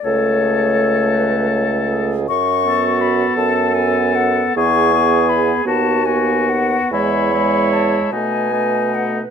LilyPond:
<<
  \new Staff \with { instrumentName = "Flute" } { \time 6/8 \key a \major \tempo 4. = 51 cis''2~ cis''8 r8 | \key b \mixolydian cis'''4 b''8 a''8 gis''8 fis''8 | cis'''4 b''8 a''8 gis''8 fis''8 | b''4 a''8 gis''4 fis''8 | }
  \new Staff \with { instrumentName = "Clarinet" } { \time 6/8 \key a \major a'8 gis'8 a'8 b'8 a'8 gis'8 | \key b \mixolydian fis'4. a'4. | gis'4. fis'4 r8 | cis''4. b'4. | }
  \new Staff \with { instrumentName = "Oboe" } { \time 6/8 \key a \major a'2. | \key b \mixolydian r8 a'4. a'4 | gis'8 gis'4 fis'8 fis'4 | e'8 e'4 dis'8 dis'4 | }
  \new Staff \with { instrumentName = "French horn" } { \time 6/8 \key a \major a2. | \key b \mixolydian r8 b4. b4 | b8 b4 b8 b4 | gis8 gis4 a8 a4 | }
  \new Staff \with { instrumentName = "Bassoon" } { \clef bass \time 6/8 \key a \major cis,2. | \key b \mixolydian fis,4. fis,4. | e,4. dis,4. | e,4. b,4. | }
>>